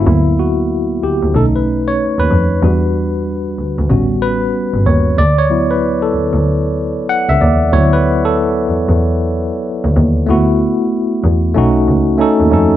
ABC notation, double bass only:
X:1
M:4/4
L:1/16
Q:"Swing 16ths" 1/4=94
K:D
V:1 name="Double bass" clef=bass
D,,6 D,, D,, B,,,4 z ^D,, =F,,2 | E,,6 D,, D,, A,,,4 z G,,, _E,,2 | D,,6 D,, D,,4 z2 C,, _E,,2 | D,,6 E,, E,,4 z2 D,, _E,,2 |
D,,2 z4 E,,2 B,,,2 C,, z2 ^D,, =F,,2 |]